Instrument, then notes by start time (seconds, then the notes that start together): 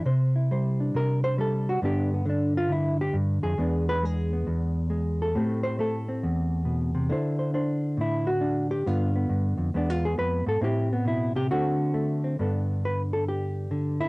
hollow-body jazz guitar
0.06 C3 C5
0.36 E4
0.51 G3 C5
0.80 D4
0.94 C3 A#4
1.24 C5
1.38 G3 A4
1.69 F#4
1.82 G2 D3 B3 D4 G4
2.14 B3
2.26 D3 D4
2.57 F4
2.69 D3 E4
3.01 G4
3.13 G2
3.43 F2 G#4
3.58 E2 G#3 B3 D4
3.89 B4
4.03 G#3 G#4
4.33 B3
4.47 E2
4.90 G#3
5.22 A4
5.35 A2 A3 C4 G4
5.63 C5
5.79 A3 A4
6.08 C4
6.23 E2
6.65 B2
6.95 C3
7.10 D3 D4 E4 C5
7.39 C5
7.54 D4 C5
7.97 A2 E4
8.27 F#4
8.41 D4
8.71 G4
8.86 G2 D3 B3 F4
9.16 B3
9.29 G2
9.58 F2
9.74 E2 G#3 B3 D4
9.90 F4
10.05 G#4
10.18 F2 B4
10.46 G#2 A4
10.61 A2 C4 E4 G4
10.93 B3
11.05 B2 E4
11.35 C3 G4
11.51 D3 A3 C4 F#4
11.94 A3
12.24 C4
12.39 G2 D3 B3 D4 A4
12.85 B4
13.13 A4
13.29 G4
13.71 D3
14.01 E4